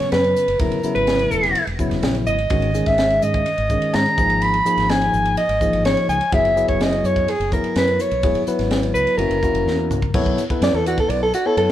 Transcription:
Already playing: C#3 F#3 B3 C#4
0.00 muted fretless electric bass stroke, snare, ride
0.12 F#2 B4, snare, ride
0.24 ride
0.36 hi-hat pedal
0.48 F#1, ride
0.59 E1 C#3 F#3 B3 E4 A#4, kick, ride
0.72 ride
0.83 C#3 F#3 B3 E4, muted fretless electric bass stroke, hi-hat pedal
0.95 G#1 B4, ride
1.07 snare, ride
1.19 ride
1.31 E1, hi-hat pedal
1.43 snare, ride
1.55 ride
1.67 E1, ride
1.79 C#3 F#3 B3 E4, kick, hi-hat pedal
1.91 E1, snare, ride
2.03 A#1, snare, ride
2.15 ride
2.26 G#1 D#5, hi-hat pedal
2.38 ride
2.50 G#1 D#3 G#3 C#4 F#4, kick, ride
2.62 ride
2.74 D#3 G#3 C#4 G#4, hi-hat pedal
2.86 G#1 E5, kick, snare, ride
2.98 snare, ride
3.10 ride
3.22 G#2 D#5, hi-hat pedal
3.34 kick, ride
3.46 ride
3.58 G#1, ride
3.69 D#3 G#3 C#4 G#4, kick, hi-hat pedal
3.82 ride
3.94 G#2 A#5, snare, ride
4.06 ride
4.18 G#1 F3 A#3 D#4 G#4, kick, hi-hat pedal
4.30 ride
4.42 B5, ride
4.54 ride
4.65 F3 A#3 D#4 G#4, muted fretless electric bass stroke, hi-hat pedal
4.77 G#1, snare, ride
4.89 G#5, snare, ride
5.01 ride
5.13 G#1, hi-hat pedal
5.25 ride
5.37 D#5, ride
5.49 G#1, ride
5.61 F3 A#3 D#4 G#4, kick, hi-hat pedal
5.73 G#1, ride
5.85 C#5, snare, ride
5.97 ride
6.09 C#2 G#5, hi-hat pedal
6.21 ride
6.32 F#1 F#3 B3 E4 G#4 E5, kick, ride
6.45 ride
6.56 F#3 B3 E4 G#4, hi-hat pedal
6.68 F#1 C#5, kick, ride
6.81 D#5, snare, ride
6.93 ride
7.04 F#2 C#5, hi-hat pedal
7.16 kick, ride
7.28 G#4, ride
7.40 F#1, ride
7.52 F#3 B3 E4 A#4, kick, hi-hat pedal
7.64 ride
7.76 F#2 B4, snare, ride
7.88 ride
7.99 C#5, hi-hat pedal
8.11 B1, ride
8.23 E1 F#3 B3 E4 G#4, kick, ride
8.35 ride
8.47 F#3 B3 E4 B4, muted fretless electric bass stroke, hi-hat pedal
8.59 G#1, snare, ride
8.71 snare, ride
8.83 ride
8.94 C#2 B4, hi-hat pedal
9.07 ride
9.18 F#1 A#3 C#4 E4 F#4 A#4, ride
9.30 F#1, ride
9.43 A#3 C#4 E4 F#4, kick, hi-hat pedal
9.54 F#1, ride
9.66 E2, snare
9.90 C#2, hi-hat pedal, mid tom
10.02 kick
10.14 B1 B3 E4 A4 C#5, kick, crash
10.26 kick
10.38 hi-hat pedal, ride
10.50 B3 E4 A4 B4, kick, ride
10.61 F#2 D5, snare, ride
10.74 E2 A4
10.86 F#4, hi-hat pedal, ride
10.98 A4, kick, ride
11.09 B1 D5, ride
11.23 A4
11.34 F#4, hi-hat pedal, ride
11.46 B3 E4 A4 C#5
11.57 F#2 A4, ride

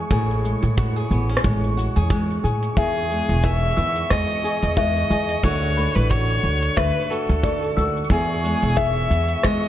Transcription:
Already playing: E2 G#3 B3 G#4 C#6
0.11 A1 A2 G#4, kick, open hi-hat, shaker
0.30 shaker
0.44 G#3, shaker
0.63 A2, open hi-hat, shaker
0.77 F#4, kick, open hi-hat, shaker
0.96 G#4, shaker
1.11 A1 B3, shaker
1.30 C#4, open hi-hat, shaker
1.37 cross-stick
1.44 A1 G#3, kick, open hi-hat, shaker
1.64 shaker
1.77 F#4, shaker
1.96 E2 G#4, open hi-hat, shaker
2.10 G#3, kick, open hi-hat, shaker
2.31 shaker
2.44 A2 G#4, shaker
2.63 open hi-hat, shaker
2.77 E2 G#4 E5 C#6, kick, open hi-hat, shaker
3.11 G#3, shaker
3.29 E1, open hi-hat, shaker
3.44 G#4 D#5 E5, kick, open hi-hat, shaker
3.77 E2 B3 E6, shaker
3.96 open hi-hat, shaker
4.10 E2 G#3 D#5, kick, cross-stick, open hi-hat, shaker
4.30 shaker
4.44 G#4, shaker
4.63 E2, open hi-hat, shaker
4.77 G#3 D#5 E5, kick, open hi-hat, shaker
4.97 shaker
5.10 E2 G#4, shaker
5.29 open hi-hat, shaker
5.43 D2 D3 F#4 C#5, kick, open hi-hat, shaker
5.63 shaker
5.77 A3 B5, shaker
5.95 A1 B4, open hi-hat, shaker
6.11 F#4 C#5, kick, open hi-hat, shaker
6.30 shaker
6.44 D2
6.63 open hi-hat, shaker
6.77 D2 A3 B4 E5, kick, cross-stick, open hi-hat, shaker
7.10 F#4 A4, shaker
7.29 D2, open hi-hat, shaker
7.43 A3 D5, kick, open hi-hat, shaker
7.64 shaker
7.77 D2 F#4 E6, shaker
7.97 shaker
8.04 shaker
8.10 E2 G#4, kick, open hi-hat, shaker
8.21 shaker
8.44 G#3, shaker
8.62 E1, open hi-hat, shaker
8.66 open hi-hat
8.72 open hi-hat
8.77 G#4 E5, kick, open hi-hat, shaker
9.11 E2 B3, shaker
9.29 open hi-hat, shaker
9.43 E2 G#3 D#5, kick, cross-stick, open hi-hat, shaker
9.63 shaker

